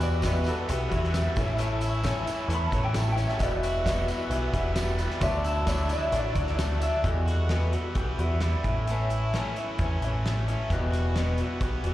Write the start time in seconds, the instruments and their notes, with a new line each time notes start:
Already playing: steel-string acoustic guitar E2 B2 E3 G3 B3 F#4, picked electric bass E2, tonewheel organ B4 E5 F#5 E6
0.00 overdriven electric guitar F#4, clean electric guitar D5, closed hi-hat, tambourine
0.22 steel-string acoustic guitar E2 B2 E3 G3 B3 F#4, grand piano F#4 G4 E5, kick, snare, closed hi-hat, tambourine
0.28 clean electric guitar B4
0.44 steel-string acoustic guitar E3 G3 B3 F#4, closed hi-hat, tambourine
0.49 clean electric guitar A4
0.68 picked electric bass B1, steel-string acoustic guitar E3 G3 B3 F#4, grand piano F#4 G4 E5, clean electric guitar G4, closed hi-hat, tambourine
0.89 picked electric bass E2, steel-string acoustic guitar E3 G3 B3 F#4, grand piano F#4 G4 E5, kick, closed hi-hat, tambourine
0.96 clean electric guitar E4
1.04 snare
1.14 overdriven electric guitar G3, grand piano F#4 G4 E5, snare, closed hi-hat, tambourine
1.36 picked electric bass A1, overdriven electric guitar A2, steel-string acoustic guitar A3 C#4 E4, grand piano E4 A4 C#5, tonewheel organ C#5 E5 A5, kick, closed hi-hat, tambourine
1.57 steel-string acoustic guitar A2 E3 A3 C#4 E4, closed hi-hat, tambourine
1.81 overdriven electric guitar E4, closed hi-hat, tambourine
2.03 steel-string acoustic guitar A2 E3 A3 C#4 E4, grand piano E4 A4 C#5, kick, snare, closed hi-hat, tambourine
2.25 overdriven electric guitar E3, steel-string acoustic guitar A3 C#4 E4, closed hi-hat, tambourine
2.48 picked electric bass E2, steel-string acoustic guitar E3 A3 C#4 E4, grand piano E4 A4 B4, closed hi-hat, tambourine
2.55 clean electric guitar B5
2.67 clean electric guitar A5
2.72 picked electric bass A1, overdriven electric guitar E3, steel-string acoustic guitar A3 C#4 E4, grand piano E4 A4 C#5, kick, closed hi-hat, tambourine
2.84 clean electric guitar G5
2.93 overdriven electric guitar A3, grand piano E4 A4 C#5, snare, closed hi-hat, tambourine
2.99 clean electric guitar A5
3.12 clean electric guitar G5
3.16 steel-string acoustic guitar A3 C#4 E4, closed hi-hat, tambourine
3.27 clean electric guitar E5, snare
3.38 picked electric bass E1, steel-string acoustic guitar E2 B2 E3 G3 B3 F#4, grand piano F#4 G4 E5, tonewheel organ B4 E5 F#5, kick, closed hi-hat, tambourine
3.43 clean electric guitar D5
3.58 clean electric guitar E5
3.63 overdriven electric guitar F#4, closed hi-hat, tambourine
3.84 steel-string acoustic guitar E2 B2 E3 G3 B3 F#4, grand piano F#4 G4 E5, kick, snare, closed hi-hat, tambourine
4.07 steel-string acoustic guitar E3 G3 B3 F#4, closed hi-hat, tambourine
4.30 picked electric bass B1, steel-string acoustic guitar E3 G3 B3 F#4, grand piano F#4 G4 E5, closed hi-hat, tambourine
4.52 picked electric bass E1, steel-string acoustic guitar E3 G3 B3 F#4, grand piano F#4 G4 E5, kick, closed hi-hat, tambourine
4.75 overdriven electric guitar G3, grand piano F#4 G4 E5, snare, closed hi-hat, tambourine
4.99 steel-string acoustic guitar E3 G3 B3 F#4, closed hi-hat, tambourine
5.10 snare
5.20 picked electric bass D2, steel-string acoustic guitar D3 F#3 A3 D4 E4, grand piano E4 F#4 D5, tonewheel organ D5 A5, clean electric guitar E5, kick, closed hi-hat, tambourine
5.43 overdriven electric guitar E4, closed hi-hat, tambourine
5.48 clean electric guitar A5
5.65 steel-string acoustic guitar D3 F#3 A3, grand piano E4 F#4 D5, kick, snare, closed hi-hat, tambourine
5.69 steel-string acoustic guitar D4 E4
5.89 overdriven electric guitar F#3, steel-string acoustic guitar A3 D4 E4, clean electric guitar E5, closed hi-hat, tambourine
6.10 picked electric bass A1, steel-string acoustic guitar F#3, grand piano E4 F#4 D5, closed hi-hat, tambourine
6.14 steel-string acoustic guitar A3 D4 E4, clean electric guitar D5
6.33 picked electric bass D2, overdriven electric guitar F#3, steel-string acoustic guitar A3 D4 E4, grand piano E4 F#4 D5, kick, closed hi-hat, tambourine
6.47 snare
6.55 overdriven electric guitar A3, grand piano E4 F#4 D5, snare, closed hi-hat
6.59 tambourine
6.79 steel-string acoustic guitar A3 D4 E4, clean electric guitar E5, closed hi-hat, tambourine
7.03 steel-string acoustic guitar E2 B2 E3 G3 B3 F#4, picked electric bass E2, clean electric guitar A4, kick, closed hi-hat
7.26 overdriven electric guitar F#4, snare, closed hi-hat
7.49 steel-string acoustic guitar E2 B2 E3 G3 B3 F#4, snare, closed hi-hat
7.72 steel-string acoustic guitar E3 G3 B3 F#4, closed hi-hat
7.95 picked electric bass B1, steel-string acoustic guitar E3 G3 B3 F#4, clean electric guitar G4, kick, closed hi-hat
8.18 picked electric bass E2, steel-string acoustic guitar E3 G3 B3 F#4, clean electric guitar E4, closed hi-hat
8.40 overdriven electric guitar G3, clean electric guitar E4, snare, closed hi-hat
8.64 picked electric bass A1, overdriven electric guitar A2, steel-string acoustic guitar C#4 E4, kick, closed hi-hat
8.68 steel-string acoustic guitar A3
8.87 steel-string acoustic guitar A2 E3 A3, closed hi-hat
8.91 steel-string acoustic guitar C#4 E4
9.10 overdriven electric guitar E4, closed hi-hat
9.34 steel-string acoustic guitar A2 E3 A3 C#4 E4, snare, closed hi-hat
9.56 overdriven electric guitar E3, steel-string acoustic guitar C#4 E4, closed hi-hat
9.60 steel-string acoustic guitar A3
9.79 picked electric bass E2, steel-string acoustic guitar E3, kick, closed hi-hat
9.83 steel-string acoustic guitar A3 C#4 E4
10.02 picked electric bass A1, overdriven electric guitar E3, steel-string acoustic guitar E4, closed hi-hat
10.06 steel-string acoustic guitar A3 C#4
10.25 overdriven electric guitar A3, snare, closed hi-hat
10.48 steel-string acoustic guitar A3 C#4 E4, closed hi-hat
10.70 picked electric bass E1, steel-string acoustic guitar E2 B2 E3 G3 B3 F#4, kick, closed hi-hat
10.91 overdriven electric guitar F#4, snare, closed hi-hat
11.16 steel-string acoustic guitar E2 B2 E3 G3 B3 F#4, snare, closed hi-hat
11.38 steel-string acoustic guitar G3 B3 F#4, closed hi-hat
11.42 steel-string acoustic guitar E3
11.61 picked electric bass B1, steel-string acoustic guitar E3 G3 B3 F#4, kick, closed hi-hat
11.83 picked electric bass E1, steel-string acoustic guitar G3 B3 F#4, closed hi-hat
11.87 steel-string acoustic guitar E3